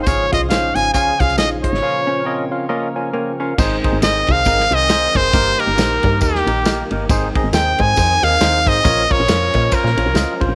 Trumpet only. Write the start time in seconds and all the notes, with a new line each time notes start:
0.03 C5
0.07 C#5
0.34 D#5
0.50 F5
0.75 G#5
0.94 G#5
1.20 F5
1.38 D#5
1.63 C#5
4.04 D#5
4.32 F5
4.74 D#5
5.16 C5
5.60 A#4
6.23 G4
7.54 G5
7.81 G#5
8.24 F5
8.68 D#5
9.12 C#5
9.74 A#4